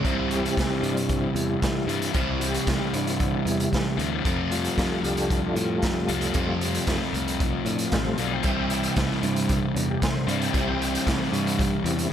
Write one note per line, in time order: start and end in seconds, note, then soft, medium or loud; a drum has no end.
0.03 0.47 C2 medium
0.03 1.86 C3 medium
0.03 1.86 E3 medium
0.03 1.89 G3 medium
0.03 1.39 G3 soft
0.03 0.99 C4 soft
0.03 1.88 C4 medium
0.03 1.87 E4 medium
0.03 2.11 E4 soft
0.03 kick loud
0.03 closed hi-hat medium
0.30 0.32 F#4 medium
0.30 closed hi-hat medium
0.34 0.83 G4 medium
0.45 closed hi-hat medium
0.57 0.68 C2 medium
0.57 kick loud
0.57 snare medium
0.57 closed hi-hat medium
0.72 snare soft
0.83 1.25 G2 medium
0.83 closed hi-hat medium
0.88 0.98 D4 medium
0.97 1.36 C4 medium
0.97 closed hi-hat medium
1.09 kick loud
1.09 closed hi-hat medium
1.35 1.56 E2 medium
1.35 closed hi-hat medium
1.41 1.89 G3 medium
1.62 kick medium
1.62 snare loud
1.62 closed hi-hat medium
1.87 2.09 G2 medium
1.87 2.12 C3 medium
1.87 2.13 E3 medium
1.87 2.15 G3 medium
1.87 2.16 C4 medium
1.87 2.13 E4 medium
1.87 closed hi-hat medium
2.02 closed hi-hat medium
2.13 2.57 C2 medium
2.13 3.96 C3 medium
2.13 3.97 E3 medium
2.13 3.99 G3 medium
2.13 3.98 C4 medium
2.13 3.96 E4 medium
2.13 kick loud
2.13 closed hi-hat medium
2.39 2.42 F#4 medium
2.39 closed hi-hat medium
2.44 2.93 G4 medium
2.54 closed hi-hat medium
2.67 2.78 C2 medium
2.67 kick loud
2.67 snare loud
2.67 closed hi-hat medium
2.94 3.36 G2 medium
2.94 3.46 G3 soft
2.94 3.08 C4 soft
2.94 3.08 D4 medium
2.94 3.69 E4 medium
2.94 closed hi-hat medium
3.07 3.46 C4 medium
3.07 closed hi-hat medium
3.20 kick loud
3.20 closed hi-hat medium
3.45 3.67 E2 medium
3.45 3.96 E3 medium
3.45 3.98 G3 medium
3.45 closed hi-hat medium
3.60 closed hi-hat medium
3.73 kick medium
3.73 snare medium
3.73 closed hi-hat medium
3.97 4.19 D2 medium
3.97 4.24 C3 medium
3.97 4.23 E3 medium
3.97 4.25 G3 medium
3.97 4.26 C4 medium
3.97 4.22 E4 medium
3.97 closed hi-hat medium
4.24 6.32 F2 medium
4.24 4.67 F2 medium
4.24 6.34 C3 medium
4.24 6.06 F3 medium
4.24 6.07 A3 medium
4.24 6.09 C4 medium
4.24 6.07 F4 medium
4.24 kick loud
4.24 closed hi-hat medium
4.51 6.57 G3 soft
4.51 6.57 A3 soft
4.51 5.31 F4 medium
4.51 closed hi-hat medium
4.65 closed hi-hat medium
4.78 4.88 F2 medium
4.78 kick loud
4.78 snare loud
4.78 closed hi-hat medium
4.99 5.46 C2 medium
4.99 5.03 F#4 medium
5.04 5.28 D4 medium
5.04 5.29 G4 medium
5.04 closed hi-hat medium
5.17 closed hi-hat medium
5.30 5.55 D4 medium
5.30 5.55 F4 medium
5.30 kick loud
5.30 closed hi-hat medium
5.52 5.77 A2 medium
5.52 5.56 E4 medium
5.52 closed hi-hat medium
5.57 6.61 F4 medium
5.82 kick medium
5.82 snare medium
5.82 closed hi-hat medium
6.08 6.30 C2 medium
6.08 6.33 F3 medium
6.08 6.34 A3 medium
6.08 6.36 C4 medium
6.08 6.33 F4 medium
6.08 closed hi-hat medium
6.21 closed hi-hat medium
6.34 8.42 F2 medium
6.34 6.77 F2 medium
6.34 8.42 C3 medium
6.34 8.16 F3 medium
6.34 8.17 A3 medium
6.34 8.18 C4 medium
6.34 8.16 F4 medium
6.34 kick loud
6.34 closed hi-hat medium
6.61 6.96 G3 soft
6.61 6.97 A3 soft
6.61 6.97 F4 medium
6.61 closed hi-hat medium
6.74 closed hi-hat medium
6.87 6.98 F2 medium
6.87 kick loud
6.87 snare loud
6.87 closed hi-hat medium
7.02 snare soft
7.13 7.55 C2 medium
7.13 closed hi-hat medium
7.28 closed hi-hat medium
7.40 kick loud
7.40 closed hi-hat medium
7.65 7.86 A2 medium
7.65 7.68 C#4 medium
7.65 closed hi-hat medium
7.70 7.80 D4 medium
7.79 7.93 F4 medium
7.79 closed hi-hat medium
7.92 8.16 A1 medium
7.92 8.16 G3 soft
7.92 8.17 A3 soft
7.92 8.17 F4 soft
7.92 kick medium
7.92 snare loud
7.92 closed hi-hat medium
7.96 8.20 C5 medium
8.18 8.42 B1 medium
8.18 8.43 F3 medium
8.18 8.44 A3 medium
8.18 8.45 C4 medium
8.18 8.43 F4 medium
8.18 closed hi-hat medium
8.22 8.32 D5 medium
8.33 8.43 G5 medium
8.43 8.86 C2 medium
8.43 10.26 C3 medium
8.43 10.26 E3 medium
8.43 10.26 G3 medium
8.43 10.26 C4 medium
8.43 10.25 E4 medium
8.43 8.92 E5 medium
8.43 8.95 G5 medium
8.43 kick loud
8.43 closed hi-hat medium
8.70 closed hi-hat medium
8.83 closed hi-hat medium
8.96 9.07 C2 medium
8.96 kick loud
8.96 snare loud
8.96 closed hi-hat medium
9.11 snare soft
9.23 9.65 G2 medium
9.23 9.58 G3 soft
9.23 9.58 C4 soft
9.23 9.58 E4 medium
9.23 closed hi-hat medium
9.36 closed hi-hat medium
9.49 kick loud
9.49 closed hi-hat medium
9.74 9.97 E2 medium
9.74 9.77 C#4 medium
9.74 closed hi-hat medium
9.78 9.89 D4 medium
9.90 10.02 G4 medium
10.02 10.29 C5 medium
10.02 kick medium
10.02 snare loud
10.02 closed hi-hat medium
10.27 10.49 G2 medium
10.27 10.51 C3 medium
10.27 10.52 E3 medium
10.27 10.53 G3 medium
10.27 10.52 C4 medium
10.27 10.52 E4 medium
10.27 10.41 D5 medium
10.27 closed hi-hat medium
10.42 10.54 G5 medium
10.42 closed hi-hat medium
10.52 10.96 C2 medium
10.52 12.13 C3 medium
10.52 12.13 E3 medium
10.52 10.78 G3 medium
10.52 12.13 G3 medium
10.52 12.13 C4 medium
10.52 11.30 C4 soft
10.52 10.78 E4 medium
10.52 12.13 E4 medium
10.52 kick loud
10.52 closed hi-hat medium
10.57 11.07 G5 medium
10.82 closed hi-hat medium
10.95 closed hi-hat medium
11.07 11.17 C2 medium
11.07 kick loud
11.07 snare loud
11.07 closed hi-hat medium
11.22 snare soft
11.33 11.75 G2 medium
11.33 closed hi-hat medium
11.47 closed hi-hat medium
11.59 kick loud
11.59 closed hi-hat medium
11.84 12.06 E2 medium
11.84 12.08 G3 soft
11.84 12.08 C4 soft
11.84 12.08 E4 medium
11.84 closed hi-hat medium
11.99 closed hi-hat medium